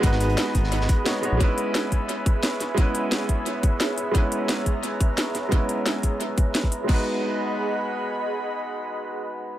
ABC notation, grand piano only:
X:1
M:4/4
L:1/8
Q:1/4=175
K:G#m
V:1 name="Grand piano"
[G,B,DFB]6 [G,B,DFc] [G,B,DFc] | [G,B,CEB]6- [G,B,CEB] z | [G,B,CEB]6- [G,B,CEB] z | [G,B,CEB]6- [G,B,CEB] z |
[G,B,CEB]6- [G,B,CEB] z | [G,B,DFB]8- | [G,B,DFB]8 |]